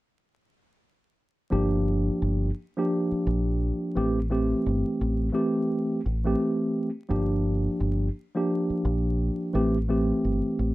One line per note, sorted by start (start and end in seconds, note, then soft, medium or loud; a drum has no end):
1.50 2.08 G1 loud
1.50 2.49 F3 medium
1.50 2.49 A#3 medium
1.50 2.49 D4 medium
1.50 2.50 G4 loud
2.22 2.50 G1 loud
2.77 3.96 F3 medium
2.77 3.97 A#3 medium
2.77 3.97 D4 medium
2.77 3.96 G4 loud
3.12 muted fingered electric bass stroke soft
3.27 3.71 A#1 medium
3.95 4.53 A1 loud
3.95 4.18 E3 medium
3.95 4.18 A3 medium
3.95 4.19 C4 medium
3.95 4.19 G4 loud
4.30 5.28 E3 medium
4.30 5.28 A3 medium
4.30 5.29 C4 medium
4.30 5.29 G4 medium
4.66 4.82 G1 medium
5.01 5.29 A1 loud
5.33 5.99 E3 medium
5.33 6.00 A3 medium
5.33 6.00 C4 medium
5.33 6.00 G4 loud
6.06 6.34 A1 medium
6.25 6.89 E3 medium
6.25 6.89 A3 medium
6.25 6.89 C4 medium
6.25 6.90 G4 loud
7.09 7.67 G1 loud
7.09 8.07 F3 medium
7.09 8.07 A#3 medium
7.09 8.08 D4 medium
7.09 8.08 G4 medium
7.80 8.08 G1 loud
8.35 9.55 F3 loud
8.35 9.55 A#3 medium
8.35 9.55 D4 medium
8.35 9.54 G4 medium
8.70 muted fingered electric bass stroke soft
8.85 9.29 A#1 medium
9.53 10.11 A1 loud
9.53 9.76 E3 medium
9.53 9.76 A3 medium
9.53 9.77 C4 medium
9.53 9.77 G4 loud
9.88 10.75 E3 medium
9.88 10.75 A3 medium
9.88 10.75 C4 medium
9.88 10.75 G4 medium
10.24 10.40 G1 medium
10.59 10.75 A1 loud